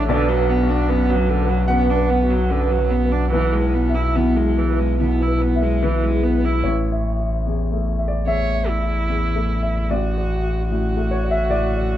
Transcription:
Already playing: A1 A2 A3 D4 F#4 A4 C#5 D5 E5
0.09 B1 D3 B4 D5
0.28 F#3 B5
0.37 B4
0.48 B3 D5
0.63 F#4
0.69 D4 B5
0.89 F#2 B3 B4
1.10 F#3 B5
1.15 F#3
1.29 D3 F#5
1.43 B4
1.49 F#3 B5
1.68 F#2 B3 B4 F#5
1.89 D4 F#5
1.96 B4
2.10 B3 F#5
2.23 F#4
2.30 F#3 B5
2.50 F#2 D3 B4
2.71 F#3
2.78 F#3
2.90 B3 F#5
3.05 B4
3.12 D4
3.31 B1 E3 E4 B4
3.53 G#3 E5
3.61 B4
3.74 B3 G#4
3.89 E4
3.95 E4 E5
4.16 B2 B3 E4
4.37 G#3 E5
4.45 G#3
4.58 E3 B4
4.73 B4
4.78 G#3 E5
4.99 B2 B3 E4
5.20 E4 B4
5.28 B4
5.41 B3 B4
5.55 E4
5.62 G#3 E5
5.82 B2 E3 E4 B4
6.03 G#3
6.11 G#3
6.24 B3 B4
6.37 B4
6.45 E4
6.64 A1 C#5
6.92 E5
7.20 E4
7.47 E2
7.72 A3
7.99 E5
8.08 D5
8.27 E2 C#5 E5
8.54 E5
8.68 E4
8.82 E4
9.09 E2
9.36 A3
9.63 E5
9.90 A1 F#4 D5
10.18 D5
10.43 F#4
10.70 A2 F#4
10.97 A3
11.11 C#5
11.23 D5
11.31 E5
11.50 A2 D5
11.77 D5

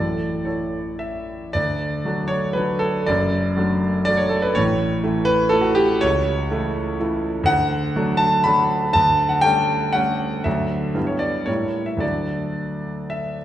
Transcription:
Already playing: A1 A2 E3 A3 E4 A4 D5
0.45 E4 A4 C#5
0.99 E5
1.53 D2 D5
2.05 F#3 A3 D4
2.28 C#5
2.53 F#3 A3 D4 B4
2.79 A4
3.06 F#1 F#2 D5
3.56 F#3 A3 D4
4.05 F#3 A3 D4 D5
4.17 C#5
4.29 A4
4.42 B4
4.55 A1 A2 C#5
5.04 E3 A3 E4
5.25 B4
5.49 E3 A3 E4 A4
5.61 F#4
5.75 G4
6.01 C#2 C#5
6.51 E3 A3 E4
7.00 E3 A3 E4
7.43 D2 F#5
7.96 F#3 A3 D4
8.17 A5
8.44 F#3 A3 D4 B5
8.93 D2 A5
9.29 F#5
9.41 G3 A3 C#4 G5
9.93 G3 A3 C#4 F#5
10.44 D2 F#3 A3 D4 E5
10.95 G2 G3 B3 E4
11.07 C#5
11.19 D5
11.46 A2 G3 A#3 E4 C#5
11.86 E5
11.97 D2 F#3 A3 D4 D5
13.10 E5

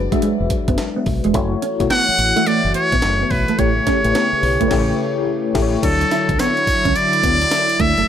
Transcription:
Already playing: F#3 G#3 D4 F#4 B4 D5
0.11 G#3 D4 F#4 E5, kick, closed hi-hat
0.22 G#3, closed hi-hat
0.40 E1
0.50 muted clean electric guitar stroke, kick, closed hi-hat
0.68 F#1 B3, kick, closed hi-hat
0.78 snare, closed hi-hat
0.96 B3
1.06 B1, muted clean electric guitar stroke, kick, open hi-hat
1.24 E1 G#3, closed hi-hat
1.34 F#1 E3 A3 E4 F#4 C#5, kick, closed hi-hat
1.52 muted clean electric guitar stroke
1.62 C#4, closed hi-hat
1.80 B1 A3 E4 F#4 C#5, kick, closed hi-hat
1.90 B3 F#5, snare, closed hi-hat
2.08 muted clean electric guitar stroke, muted fingered electric bass stroke
2.19 A1, closed hi-hat
2.36 A3 E4 F#4 E5, closed hi-hat
2.46 A3 D5, closed hi-hat
2.65 F#1
2.74 C#5, muted clean electric guitar stroke, closed hi-hat
2.92 A1 B3, kick, closed hi-hat
3.02 F#1, snare, closed hi-hat
3.21 B3
3.31 B1 B4, muted clean electric guitar stroke, kick, open hi-hat
3.48 A3, closed hi-hat
3.58 A1 C#3 A3 E4 G4 C#5, kick, closed hi-hat
3.76 muted clean electric guitar stroke
3.87 C#4, kick, snare, closed hi-hat
4.04 A1 A3 E4 G4 B4, closed hi-hat
4.12 B3 C#5, snare, closed hi-hat
4.33 muted fingered electric bass stroke, muted clean electric guitar stroke
4.43 B1, open hi-hat
4.60 A3 E4 G4 B4, kick, closed hi-hat
4.68 A1 A3 E4 G4 C#5, kick, snare, crash
4.78 C#5
5.54 A1 A3 E4 G4, kick, snare, crash
5.62 C#5
5.83 D2 D3 F#3 D4 E4 A4 C#5, kick, closed hi-hat, crash, tambourine
6.01 muted clean electric guitar stroke, closed hi-hat
6.11 E4, snare, closed hi-hat, tambourine
6.29 C#2 C#4, kick, closed hi-hat
6.39 B3 C#5, snare, closed hi-hat, tambourine
6.57 muted clean electric guitar stroke, closed hi-hat
6.67 muted fingered electric bass stroke, kick, open hi-hat, tambourine
6.85 C#2 C#4, kick, closed hi-hat
6.96 D5, closed hi-hat, tambourine
7.13 closed hi-hat
7.23 D2 F#3 B3 D4 E4 D5, kick, closed hi-hat, tambourine
7.42 closed hi-hat
7.51 muted clean electric guitar stroke, snare, closed hi-hat, tambourine
7.69 closed hi-hat
7.80 D2 A3 E5, kick, closed hi-hat
7.97 F#1 A3, closed hi-hat

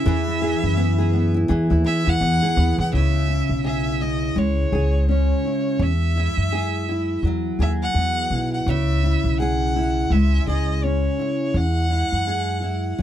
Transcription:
Already playing: C#4 E4 E5
0.06 E2 E3 G#4
0.28 E4
0.42 G#4
0.63 F#2 E4
0.77 B3
0.98 G#4
1.13 B3
1.34 E4
1.48 E2 E3 G#4
1.70 D#2 E4
1.84 G#4 E5
2.06 E2 E4 F#5
2.20 E2 B3
2.43 G#4
2.57 D#2 B3
2.78 E2 E4 F#5
2.93 C#2 C#3 E5
3.28 E4
3.50 B1
3.65 G#4 E5
4.01 E4 D#5
4.36 C#2 G#3 C#5
4.72 C#2 G#4
5.08 C#4 C#5
5.45 E4
5.79 E2 E5
6.17 E4
6.37 F#2
6.52 G#4
6.89 E4
7.23 E2 F#3
7.59 D#2 G#4 E5
7.83 F#5
7.94 E2 B3
8.30 B1 E4
8.54 F#5
8.66 C#2 C#3 E5
9.04 E4
9.24 B1
9.40 G#4 F#5
9.76 E4
10.10 C#2 G#3 E5
10.47 C#2 G#4 D#5
10.83 C#4 C#5
11.19 E4
11.54 E2 F#5
11.90 E4
12.12 F#2
12.27 G#4
12.62 E4
12.98 E2 F#3

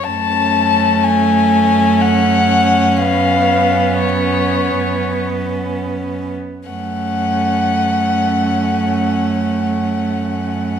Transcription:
0.03 F#2 A3 C#4 A5
1.04 G#5
2.00 F#5
2.97 B3 F5
4.00 C#5
6.69 F#2 A3 C#4 F#5

